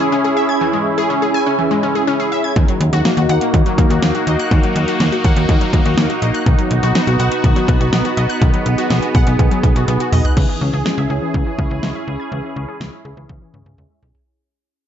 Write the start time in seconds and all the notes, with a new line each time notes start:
Already playing: C#4 E4 G#4
0.00 G#4
0.12 C#4
0.24 G#4
0.37 E5
0.49 G#6
0.61 E3
0.73 G#3
0.98 G#4
1.10 C#4
1.22 G#4
1.34 G#5
1.46 C#4
1.59 E3
1.71 G#3
1.83 C#4
1.95 G#4
2.07 C#4
2.20 G#4
2.32 E5
2.44 G#6
2.56 D#2 D#3 A#3 D#4 F#4, kick, closed hi-hat
2.68 F#3, closed hi-hat
2.81 D#2, closed hi-hat
2.93 D#2 F#4, closed hi-hat
3.05 A#3, snare, closed hi-hat
3.17 D#2 F#4, closed hi-hat
3.29 D#2 F#5, closed hi-hat
3.41 A#3, closed hi-hat
3.54 D#2 D#3, kick, closed hi-hat
3.66 F#3, closed hi-hat
3.78 D#2 A#3, kick, closed hi-hat
3.90 D#2 F#4, closed hi-hat
4.02 D#2 A#3, snare, closed hi-hat
4.15 F#4, closed hi-hat
4.27 D#2 D#5, closed hi-hat
4.39 F#6, closed hi-hat
4.51 D#2 D#3, kick, closed hi-hat
4.63 F#3, closed hi-hat
4.76 D#2, closed hi-hat
4.88 F#4, closed hi-hat
5.00 D#2 A#3, snare, closed hi-hat
5.12 F#4, closed hi-hat
5.24 D#2 F#5, kick, closed hi-hat
5.36 D#2 A#3, closed hi-hat
5.49 D#2 D#3, kick, closed hi-hat
5.61 F#3, closed hi-hat
5.73 D#2 A#3, kick, closed hi-hat
5.85 D#2 F#4, closed hi-hat
5.98 D#2 A#3, snare, closed hi-hat
6.10 F#4, closed hi-hat
6.22 A#1 D#5, closed hi-hat
6.34 F#6, closed hi-hat
6.46 B1 D#3 B3 F#4, kick, closed hi-hat
6.58 F#3, closed hi-hat
6.71 B1, closed hi-hat
6.83 B1 F#4, closed hi-hat
6.95 B3, snare, closed hi-hat
7.07 B1 F#4, closed hi-hat
7.20 B1 F#5, closed hi-hat
7.32 B3, closed hi-hat
7.44 B1 D#3, kick, closed hi-hat
7.56 F#3, closed hi-hat
7.68 B1 B3, kick, closed hi-hat
7.81 B1 F#4, closed hi-hat
7.93 B1 B3, snare, closed hi-hat
8.05 F#4, closed hi-hat
8.17 B1 D#5, closed hi-hat
8.29 F#6, closed hi-hat
8.41 B1 D#3 G#4, kick, closed hi-hat
8.54 F#3, closed hi-hat
8.66 B1, closed hi-hat
8.78 F#4, closed hi-hat
8.90 B1 B3, snare, closed hi-hat
9.02 F#4, closed hi-hat
9.15 B1 F#5, kick, closed hi-hat
9.27 B1 B3, closed hi-hat
9.39 B1 D#3, kick, closed hi-hat
9.51 F#3, closed hi-hat
9.63 B1 B3, kick, closed hi-hat
9.76 B1 F#4, closed hi-hat
9.88 B1 B3, closed hi-hat, high tom
10.00 F#4, closed hi-hat
10.12 B1 D#5, mid tom, open hi-hat
10.25 F#6, closed hi-hat, floor tom
10.37 C#2 E3 C#4 E4 G#4, kick, crash
10.49 E3
10.61 C#2 C#4
10.73 C#2 G#4
10.86 G#3, snare
10.98 C#2 E5
11.10 C#2 G#4
11.22 E3
11.34 C#2 E3, kick
11.46 E3
11.59 C#2 C#4, kick
11.71 C#2 G#4
11.83 C#2 G#3, snare
11.95 E5
12.07 C#2 G#4
12.20 G#6
12.32 C#2 E3
12.44 E3
12.56 C#2 C#4
12.68 G#4
12.81 C#2 G#3, snare
12.93 E5
13.05 C#2 G#4
13.17 C#2 E3
13.29 C#2 E3, kick, high tom
13.42 E3
13.54 C#2 C#4, mid tom
13.66 C#2 G#4, mid tom
13.78 C#2 G#3, mid tom
13.90 E5
14.03 B1 G#4, floor tom
14.15 floor tom